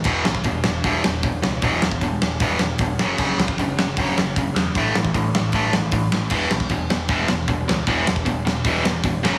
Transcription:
<<
  \new Staff \with { instrumentName = "Distorted electric guitar" } { \clef bass \time 4/4 \key fis \dorian \tempo 4 = 154 <e, b, e>8 <e, b,>8 <e, b,>8 <e, b,>8 <e, b, e>8 <e, b,>8 <e, b,>8 <e, b,>8 | <e, b, e>8 <e, b,>8 <e, b,>8 <e, b,>8 <e, b, e>8 <e, b,>8 <e, b,>8 <fis, cis fis>8 | <fis, cis fis>8 <fis, cis>8 <fis, cis>8 <fis, cis>8 <fis, cis fis>8 <fis, cis>8 <fis, cis>8 <fis, cis>8 | <a, e a>8 <a, e>8 <a, e>8 <a, e>8 <a, e a>8 <a, e>8 <a, e>8 <a, e>8 |
<e, b, e>8 <e, b,>8 <e, b,>8 <e, b,>8 <e, b, e>8 <e, b,>8 <e, b,>8 <e, b,>8 | <e, b, e>8 <e, b,>8 <e, b,>8 <e, b,>8 <e, b, e>8 <e, b,>8 <e, b,>8 <fis, cis fis>8 | }
  \new Staff \with { instrumentName = "Overdriven electric guitar" } { \clef bass \time 4/4 \key fis \dorian r1 | r1 | r1 | r1 |
<e, b, e>8 <e, b,>8 <e, b,>8 <e, b,>8 <e, b, e>8 <e, b,>8 <e, b,>8 <e, b,>8 | <e, b, e>8 <e, b,>8 <e, b,>8 <e, b,>8 <e, b, e>8 <e, b,>8 <e, b,>8 <fis, cis fis>8 | }
  \new Staff \with { instrumentName = "Picked electric bass" } { \clef bass \time 4/4 \key fis \dorian e,,8 b,,8 e,,8 e,,8 e,,8 e,,8 e,,8 cis,8 | e,,8 e,,8 e,,8 e,,8 e,,8 e,,8 e,,8 fis,,8 | fis,,8 cis,8 fis,,8 fis,,8 fis,,8 fis,,8 fis,,8 e,8 | a,,8 a,,8 a,,8 a,,8 a,,8 a,,8 a,,8 a,,8 |
e,,8 b,,8 e,,8 e,,8 e,,8 e,,8 e,,8 cis,8 | e,,8 e,,8 e,,8 e,,8 e,,8 e,,8 f,,8 fis,,8 | }
  \new DrumStaff \with { instrumentName = "Drums" } \drummode { \time 4/4 <cymc bd>8 sn16 bd16 <hho bd>8 sn8 <hho bd>8 sn8 <hho bd>8 sn8 | <hho bd>8 sn16 bd16 <hho bd>8 sn8 <hho bd>8 sn8 <hho bd>8 sn8 | <cymc bd>8 sn16 bd16 <hho bd>8 sn8 <hho bd>8 sn8 <hho bd>8 sn8 | <hho bd>8 sn16 bd16 <hho bd>8 sn8 <hho bd>8 sn8 <hho bd>8 sn8 |
<cymc bd>8 sn16 bd16 <hho bd>8 sn8 <hho bd>8 sn8 <hho bd>8 sn8 | <hho bd>8 sn16 bd16 <hho bd>8 sn8 <hho bd>8 sn8 <hho bd>8 sn8 | }
>>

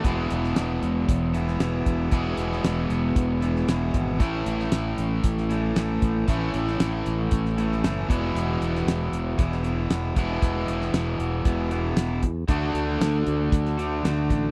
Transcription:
<<
  \new Staff \with { instrumentName = "Overdriven electric guitar" } { \clef bass \time 4/4 \key e \mixolydian \tempo 4 = 116 <e, b, e gis b e'>2~ <e, b, e gis b e'>8 <e, b, e gis b e'>8 <e, b, e gis b e'>4 | <e, b, e gis b e'>2~ <e, b, e gis b e'>8 <e, b, e gis b e'>8 <e, b, e gis b e'>4 | <a, e a cis' e'>2~ <a, e a cis' e'>8 <a, e a cis' e'>8 <a, e a cis' e'>4 | <a, e a cis' e'>2~ <a, e a cis' e'>8 <a, e a cis' e'>8 <a, e a cis' e'>8 <e, b, e gis b e'>8~ |
<e, b, e gis b e'>2 <e, b, e gis b e'>8 <e, b, e gis b e'>4 <e, b, e gis b e'>8~ | <e, b, e gis b e'>2 <e, b, e gis b e'>8 <e, b, e gis b e'>4 r8 | <d a d' fis'>2~ <d a d' fis'>8 <d a d' fis'>8 <d a d' fis'>4 | }
  \new Staff \with { instrumentName = "Overdriven electric guitar" } { \clef bass \time 4/4 \key e \mixolydian <e, b, e gis b gis'>1 | <e, b, e gis b gis'>1 | <a, e a cis' e'>1 | <a, e a cis' e'>2.~ <a, e a cis' e'>8 <e, b, e gis b e'>8~ |
<e, b, e gis b e'>2.~ <e, b, e gis b e'>8 <e, b, e gis b e'>8~ | <e, b, e gis b e'>2.~ <e, b, e gis b e'>8 r8 | <d a d' fis'>1 | }
  \new Staff \with { instrumentName = "Fingered electric bass" } { \clef bass \time 4/4 \key e \mixolydian e,,8 e,,8 e,,8 e,,8 e,,4 r8 e,,8 | e,,8 e,,8 e,,8 e,,8 e,,4 e,,8 gis,,8 | a,,8 a,,8 a,,8 a,,8 a,,4 a,,8 a,,8 | a,,8 a,,8 a,,8 a,,8 a,,4 fis,,8 e,,8 |
e,,8 e,,8 e,,8 e,,8 e,,4 e,,8 e,,8 | e,,8 e,,8 e,,8 e,,8 e,,4 e,,8 e,8 | d,8 d,8 d,8 d,8 d,4 d,8 a,,8 | }
  \new DrumStaff \with { instrumentName = "Drums" } \drummode { \time 4/4 <hh bd>8 hh16 sn16 <hh sn>8 hh8 <hh bd>8 hh16 sn16 <hh sn>8 <hh bd>8 | <hh bd>8 hh16 sn16 <hh sn>8 hh8 <hh bd>8 hh16 sn16 <hh sn>8 <hh bd>8 | <hh bd>8 hh16 sn16 <hh sn>8 hh8 <hh bd>16 sn16 hh8 <hh sn>8 <hh bd>8 | <hh bd>8 hh16 sn16 <hh sn>8 hh8 <hh bd>16 sn16 hh16 sn16 <hh sn>8 <hh bd>8 |
hh8 hh16 sn16 <hh sn>8 hh8 <hh bd>16 sn16 hh8 <hh sn>8 <hh bd>8 | <hh bd>8 hh16 sn16 <hh sn>8 hh8 <hh bd>8 hh8 <hh sn>8 <hh bd>8 | <hh bd>8 hh8 <hh sn>8 hh8 <hh bd>16 sn16 hh8 <hh sn>8 <hh bd>8 | }
>>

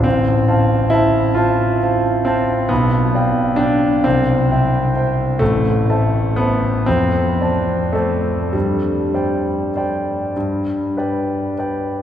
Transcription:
\new Staff \with { instrumentName = "Grand piano" } { \time 12/8 \key g \mixolydian \tempo 4. = 44 << { a,,8 <c'' f'' a''>8 <c'' f'' a''>8 <c'' f'' a''>8 <c'' f'' a''>8 <c'' f'' a''>8 b,,8 <d'' f'' g''>8 <d'' f'' g''>8 c,8 <c'' e'' g''>8 <c'' e'' g''>8 | a,,8 <c'' e'' a''>8 <c'' e'' a''>8 f,8 <c'' d'' a''>8 <c'' d'' a''>8 g,8 <c'' d'' g''>8 <c'' d'' g''>8 g,8 <b' d'' g''>8 <b' d'' g''>8 | } \\ { c'4 e'8 f'4 c'8 b4 d'8 c'4. | a4 b8 c'4 a8 g2~ g8 r8 | } >> }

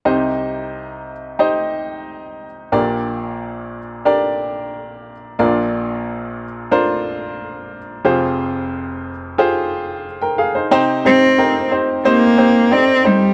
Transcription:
<<
  \new Staff \with { instrumentName = "Upright piano" } { \time 4/4 \key c \minor \tempo 4 = 90 << { r1 | r1 | r1 | r2. r16 <bes' g''>16 <aes' f''>16 <ees' c''>16~ |
<ees' c''>16 r2. r8. | } \\ { <ees' g' c'' ees''>4. r8 <ees' g' c'' ees''>4. r8 | <d' g' bes' d''>4. r8 <d' g' bes' d''>4. r8 | <d' f' bes' d''>4. r8 <d' f' bes' c''>4. r8 | <f' g' aes' c''>4. r8 <f' g' aes' c''>4 r4 |
<c' ees' g' c''>8 <c' ees' g' c''>8 <c' ees' g' bes'>8 <c' ees' g' c''>8 <c' ees' g' c''>8 <c' ees' g' c''>8 <c' ees' g' d''>8 <c' ees' g' c''>8 | } >> }
  \new Staff \with { instrumentName = "Upright piano" } { \clef bass \time 4/4 \key c \minor <c, c>1 | <bes,, bes,>1 | <bes,, bes,>1 | <f,, f,>1 |
c4. r2 r8 | }
  \new Staff \with { instrumentName = "Cello" } { \time 4/4 \key c \minor r1 | r1 | r1 | r1 |
r8 c'4 r8 bes4 c'8 g8 | }
>>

